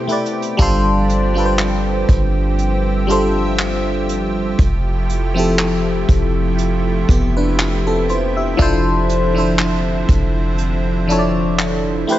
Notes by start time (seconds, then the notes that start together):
Already playing: B2 C3 A3 E4 G4 B4 C5
0.07 A3 E4 G4 B4, closed hi-hat
0.12 D5
0.26 closed hi-hat
0.42 closed hi-hat
0.57 G1 F3 G3 C4 D4 F4 A4, kick, closed hi-hat
0.62 C5
1.09 closed hi-hat
1.34 G3 D4 F4 A4
1.39 B4
1.46 C5
1.59 clap, closed hi-hat
2.09 G1, kick, closed hi-hat
2.58 E5, closed hi-hat
3.07 G3 D4 F4 A4, closed hi-hat
3.12 C5
3.59 clap, closed hi-hat
4.09 closed hi-hat
4.59 F1 A3 E4, kick, closed hi-hat
5.09 closed hi-hat
5.34 F3 C4 E4 G4
5.39 A4
5.59 clap, closed hi-hat
6.09 F1, kick, closed hi-hat
6.58 closed hi-hat
7.09 F1 B3 G4, kick, closed hi-hat
7.37 D4 B4
7.59 clap, closed hi-hat
7.87 C4 A4
8.09 E4 C5, closed hi-hat
8.37 G4 E5
8.57 F1 D3 F3 C4 D4 E4 A4, kick, closed hi-hat
8.62 C5
9.09 closed hi-hat
9.34 F3 D4 E4 A4
9.39 C5
9.59 clap, closed hi-hat
10.09 F1, kick, closed hi-hat
10.58 closed hi-hat
11.08 F3 D4 E4 A4, closed hi-hat
11.12 C#5
11.19 D5
11.59 clap, closed hi-hat
12.07 B2 C3 A3 E4 G4 B4, closed hi-hat
12.12 C5